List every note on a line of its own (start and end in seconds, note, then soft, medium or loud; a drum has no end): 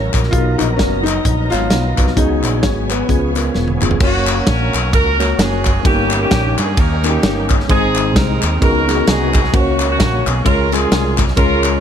0.00 0.31 F#3 medium
0.00 0.31 C#4 medium
0.00 0.31 E4 medium
0.00 0.13 A#4 medium
0.00 0.31 A#4 medium
0.00 0.12 C#5 medium
0.00 0.31 C#5 medium
0.00 0.32 E5 medium
0.00 0.32 A#5 medium
0.14 0.30 A#1 medium
0.14 0.31 F#4 medium
0.14 0.37 A#4 medium
0.14 kick medium
0.14 clap medium
0.14 closed hi-hat medium
0.23 snare soft
0.31 0.56 B1 medium
0.31 1.01 B2 medium
0.31 2.13 F#3 medium
0.31 1.04 B3 medium
0.31 2.13 B3 medium
0.31 3.98 B3 medium
0.31 1.04 D#4 medium
0.31 2.13 D#4 medium
0.31 0.60 F4 loud
0.31 1.05 F#4 medium
0.31 0.39 G#4 medium
0.31 2.13 A#4 medium
0.31 2.15 D#5 medium
0.31 2.15 A#5 medium
0.31 kick loud
0.31 closed hi-hat medium
0.38 1.08 A#4 medium
0.58 0.76 A#1 medium
0.58 0.63 D#4 medium
0.58 clap loud
0.58 closed hi-hat medium
0.77 1.18 F#1 medium
0.77 1.06 C#4 medium
0.77 kick medium
0.77 snare loud
0.77 closed hi-hat medium
1.03 1.52 D#4 loud
1.03 clap medium
1.03 closed hi-hat medium
1.25 1.48 A#1 medium
1.25 kick medium
1.25 closed hi-hat medium
1.50 1.68 G#1 loud
1.50 1.84 F#3 medium
1.50 1.83 B3 medium
1.50 1.84 D#4 medium
1.50 2.18 F4 loud
1.50 1.84 C#5 medium
1.50 snare soft
1.50 clap medium
1.50 closed hi-hat medium
1.70 1.94 B1 medium
1.70 snare loud
1.70 closed hi-hat medium
1.96 2.14 C2 medium
1.96 2.11 B3 medium
1.96 2.12 D#4 medium
1.96 2.12 F#4 medium
1.96 2.12 B4 medium
1.96 kick medium
1.96 clap medium
1.96 closed hi-hat medium
2.07 snare soft
2.15 2.45 C#2 medium
2.15 2.86 C#3 medium
2.15 3.07 F#3 medium
2.15 2.89 B3 medium
2.15 3.07 B3 medium
2.15 2.89 C#4 medium
2.15 3.07 C#4 medium
2.15 2.64 D#4 medium
2.15 2.89 F#4 medium
2.15 3.07 G#4 medium
2.15 2.90 G#4 medium
2.15 4.00 C#5 medium
2.15 4.00 G#5 medium
2.15 kick medium
2.15 closed hi-hat medium
2.43 2.61 A#1 medium
2.43 clap medium
2.43 closed hi-hat medium
2.63 3.02 G#1 medium
2.63 2.69 C#4 medium
2.63 kick medium
2.63 snare loud
2.63 closed hi-hat medium
2.90 3.79 B3 medium
2.90 clap medium
2.90 closed hi-hat medium
3.07 3.48 C#2 medium
3.07 3.78 C#3 medium
3.07 4.00 F3 medium
3.07 3.30 B3 medium
3.07 4.00 B3 medium
3.07 3.30 C#4 medium
3.07 4.00 C#4 medium
3.07 3.31 F4 medium
3.07 3.31 G#4 medium
3.07 4.00 G#4 medium
3.07 4.01 F5 medium
3.07 kick medium
3.07 closed hi-hat medium
3.35 3.68 B3 medium
3.35 3.68 C#4 medium
3.35 3.69 F4 medium
3.35 3.69 A#4 medium
3.35 snare soft
3.35 clap medium
3.35 closed hi-hat medium
3.54 3.78 E1 medium
3.54 snare medium
3.68 high tom soft
3.80 3.98 F1 medium
3.80 3.95 B3 medium
3.80 3.96 C#4 medium
3.80 3.96 F4 medium
3.80 3.97 G#4 medium
3.80 clap medium
3.80 mid tom medium
3.91 floor tom medium
3.99 4.40 F#1 medium
3.99 4.73 A#3 medium
3.99 4.90 A#3 medium
3.99 4.73 C#4 medium
3.99 4.73 F#4 medium
3.99 4.74 A#4 medium
3.99 4.74 C#5 medium
3.99 kick loud
3.99 crash loud
4.03 5.83 A#3 medium
4.03 4.46 C#4 medium
4.03 5.83 C#4 medium
4.03 5.83 F#4 medium
4.03 4.45 F#4 loud
4.27 clap loud
4.27 ride medium
4.47 4.71 A#1 loud
4.47 4.93 C#4 medium
4.47 4.93 F#4 medium
4.47 4.93 A#4 loud
4.47 kick medium
4.47 snare loud
4.47 ride medium
4.74 4.93 B1 medium
4.74 clap loud
4.74 ride medium
4.93 5.32 C#2 loud
4.93 5.39 C#4 medium
4.93 5.82 F#4 medium
4.93 5.37 A#4 loud
4.93 kick loud
4.93 ride medium
5.18 5.70 A#3 medium
5.18 5.70 C#4 medium
5.18 5.71 F#4 medium
5.18 5.71 A#4 medium
5.18 5.71 C#5 medium
5.18 snare soft
5.18 clap medium
5.18 ride medium
5.38 5.78 F#1 loud
5.38 5.83 C#4 medium
5.38 5.86 G#4 loud
5.38 snare loud
5.38 ride medium
5.65 kick medium
5.65 clap medium
5.65 ride medium
5.83 6.24 G1 loud
5.83 6.54 G2 medium
5.83 7.66 D#3 medium
5.83 7.66 G3 medium
5.83 6.57 A#3 medium
5.83 7.66 A#3 medium
5.83 6.21 A#3 medium
5.83 6.57 C#4 medium
5.83 7.66 C#4 medium
5.83 6.21 C#4 medium
5.83 6.57 D#4 medium
5.83 5.92 F#4 medium
5.83 6.57 G4 medium
5.83 6.20 G4 loud
5.83 6.58 A#4 medium
5.83 kick loud
5.83 ride medium
5.91 7.69 G4 medium
6.11 clap loud
6.11 ride medium
6.22 7.05 A#3 medium
6.22 6.79 C#4 medium
6.22 6.56 G4 medium
6.31 6.55 A#1 medium
6.31 kick medium
6.31 snare loud
6.31 ride medium
6.58 6.75 G2 medium
6.58 6.78 G#4 medium
6.58 clap medium
6.58 ride medium
6.77 7.17 D#2 loud
6.77 7.06 C#4 medium
6.77 7.66 D#4 medium
6.77 7.05 A#4 loud
6.77 kick loud
6.77 ride medium
7.03 7.54 A#3 medium
7.03 7.66 A#3 medium
7.03 7.54 C#4 medium
7.03 7.67 C#4 medium
7.03 7.55 D#4 medium
7.03 7.09 F#4 medium
7.03 7.51 G4 medium
7.03 7.55 A#4 medium
7.03 clap medium
7.03 ride medium
7.10 7.58 G4 medium
7.23 7.63 G1 medium
7.23 snare loud
7.23 ride medium
7.49 kick medium
7.49 clap medium
7.49 ride medium
7.60 snare soft
7.67 8.16 G#1 loud
7.67 8.38 G#2 medium
7.67 8.41 G#3 medium
7.67 8.60 G#3 medium
7.67 8.41 C4 medium
7.67 8.60 C4 medium
7.67 8.58 C4 medium
7.67 8.41 D#4 medium
7.67 8.60 D#4 medium
7.67 8.15 D#4 medium
7.67 8.42 G#4 medium
7.67 8.13 G#4 loud
7.67 8.42 C5 medium
7.67 kick loud
7.67 ride medium
7.95 clap loud
7.95 ride medium
8.16 8.39 C2 medium
8.16 8.58 D#4 medium
8.16 8.61 A#4 loud
8.16 kick medium
8.16 snare loud
8.16 ride medium
8.42 8.59 D#2 medium
8.42 clap loud
8.42 ride medium
8.60 9.01 C#2 loud
8.60 9.30 C#3 medium
8.60 9.52 D#3 medium
8.60 9.52 G#3 medium
8.60 8.83 B3 medium
8.60 9.52 B3 medium
8.60 8.83 C#4 medium
8.60 9.52 C#4 medium
8.60 8.83 D#4 medium
8.60 9.06 D#4 medium
8.60 8.83 F#4 medium
8.60 9.52 F#4 medium
8.60 9.50 F#4 medium
8.60 8.83 G#4 medium
8.60 9.05 A#4 loud
8.60 kick loud
8.60 ride medium
8.86 9.38 B3 medium
8.86 9.38 C#4 medium
8.86 9.38 D#4 medium
8.86 9.39 F#4 medium
8.86 9.39 G#4 medium
8.86 snare soft
8.86 clap medium
8.86 ride medium
9.07 9.47 C2 medium
9.07 9.50 B3 medium
9.07 9.50 D#4 medium
9.07 9.54 G#4 loud
9.07 snare loud
9.07 ride medium
9.34 kick medium
9.34 clap medium
9.34 ride medium
9.44 snare soft
9.52 10.00 C#2 loud
9.52 10.22 C#3 medium
9.52 10.25 A#3 medium
9.52 9.89 A#3 medium
9.52 10.44 A#3 medium
9.52 10.25 C#4 medium
9.52 9.88 C#4 medium
9.52 10.44 C#4 medium
9.52 10.25 F#4 medium
9.52 10.44 F#4 medium
9.52 9.89 F#4 medium
9.52 10.26 A#4 medium
9.52 9.60 C5 medium
9.52 kick loud
9.52 ride medium
9.59 10.29 C#5 medium
9.80 clap loud
9.80 ride medium
9.90 10.42 A#3 medium
9.90 10.41 C#4 medium
9.90 10.24 F#4 medium
10.00 10.23 A#1 medium
10.00 kick medium
10.00 snare loud
10.00 ride medium
10.27 10.43 B1 medium
10.27 10.46 G#4 medium
10.27 clap medium
10.27 ride medium
10.44 10.85 C#2 loud
10.44 11.14 C#3 medium
10.44 10.66 G#3 medium
10.44 11.80 G#3 medium
10.44 10.72 C#4 medium
10.44 10.67 C#4 medium
10.44 11.80 C#4 medium
10.44 10.71 F4 medium
10.44 10.67 F4 medium
10.44 11.80 F4 medium
10.44 10.67 G#4 medium
10.44 10.70 A#4 loud
10.44 10.67 C#5 medium
10.44 kick loud
10.44 ride medium
10.72 11.23 G#3 medium
10.72 11.23 C#4 medium
10.72 11.19 C#4 medium
10.72 11.19 F4 medium
10.72 11.23 F4 medium
10.72 11.19 G#4 medium
10.72 11.23 G#4 medium
10.72 11.23 A#4 medium
10.72 snare soft
10.72 clap medium
10.72 ride medium
10.92 11.31 C2 medium
10.92 snare loud
10.92 ride medium
11.18 kick medium
11.18 clap loud
11.18 ride medium
11.28 snare soft
11.36 11.76 C#2 loud
11.36 11.80 G#3 medium
11.36 11.80 C#4 medium
11.36 11.80 F4 medium
11.36 11.80 G#4 medium
11.36 11.80 A#4 loud
11.36 11.80 C#5 medium
11.36 kick loud
11.36 ride medium
11.64 clap loud
11.64 ride medium